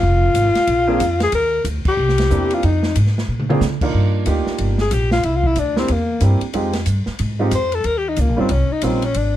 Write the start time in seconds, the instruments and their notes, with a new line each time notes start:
Already playing: alto saxophone F4
0.03 upright bass F1
0.34 upright bass G#1, hi-hat pedal, ride
0.55 muted upright bass stroke, snare, ride
0.67 upright bass A#1, ride
0.87 upright piano A#3 C4 D4 F4 G#4
1.00 upright bass F2, hi-hat pedal, ride
1.20 alto saxophone G#4, snare, ride
1.32 upright bass D#2, alto saxophone A#4, ride
1.64 upright bass D2, hi-hat pedal, ride
1.85 alto saxophone G4, muted upright bass stroke, kick, crash
1.97 upright bass C2
2.09 snare
2.18 snare, ride
2.30 upright bass E2, upright piano A#3 C4 D4 E4 G4, hi-hat pedal
2.50 alto saxophone F4, ride
2.63 upright bass F2, alto saxophone D#4, ride
2.83 snare
2.95 upright bass G#2, hi-hat pedal, ride
3.07 snare
3.18 snare
3.28 upright bass A#2
3.40 mid tom
3.49 upright piano A#3 C4 D4 F4 G#4, mid tom
3.61 upright bass D3, snare, hi-hat pedal
3.81 upright piano A#3 D4 D#4 F4 A#4, kick, crash
3.94 upright bass G2
4.26 upright bass D2, upright piano A#3 D4 D#4 F4 G4, hi-hat pedal, ride
4.46 muted upright bass stroke, snare
4.58 upright bass G1, ride
4.78 alto saxophone G#4, snare
4.91 upright bass A#1, alto saxophone G4, hi-hat pedal, ride
5.11 alto saxophone F4, snare
5.23 upright bass C2, alto saxophone E4, ride
5.36 alto saxophone F4
5.44 alto saxophone E4, kick
5.56 upright bass D2, alto saxophone D4, hi-hat pedal, ride
5.76 upright piano A#3 C4 D4 E4 G4, alto saxophone C4, snare
5.88 upright bass E2, alto saxophone A#3, ride
6.21 upright bass G2, upright piano A#3 C4 D4 E4 G4, hi-hat pedal, ride
6.41 muted upright bass stroke, ride
6.53 upright bass F2, upright piano G#3 C4 D#4 F4 G4, ride
6.73 snare, ride
6.86 upright bass G2, hi-hat pedal, ride
7.06 muted upright bass stroke, snare
7.19 upright bass G#2, ride
7.39 upright piano G#3 C4 D#4 F4 G4
7.51 upright bass F2, alto saxophone C5, hi-hat pedal, ride
7.72 alto saxophone A4, ride
7.84 upright bass D#2, alto saxophone A#4, ride
7.98 alto saxophone G4
8.09 alto saxophone D#4
8.16 upright bass C#2, alto saxophone A#3, hi-hat pedal, ride
8.28 upright bass A#1
8.37 upright bass G1, upright piano G3 A#3 C#4 D#4 F4, alto saxophone C4
8.49 upright bass C2, alto saxophone C#4, ride
8.70 alto saxophone D#4, muted upright bass stroke
8.81 upright bass A#1, upright piano G3 A#3 C#4 D#4 F4, alto saxophone C4, hi-hat pedal, ride
9.02 alto saxophone C#4, ride
9.14 upright bass G#1, alto saxophone D4, ride